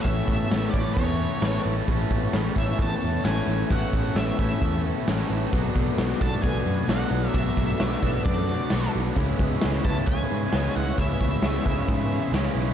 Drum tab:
HH |oooooooo|oooooooo|oooooooo|oooooooo|
SD |--o---o-|--o---o-|--o---o-|--o---o-|
BD |oo-oo---|oo-oo---|oo-oo---|oo-oo---|

HH |oooooooo|oooooooo|oooooooo|
SD |--o---o-|--o---o-|--o---o-|
BD |oo-oo---|oo-oo---|oo-oo---|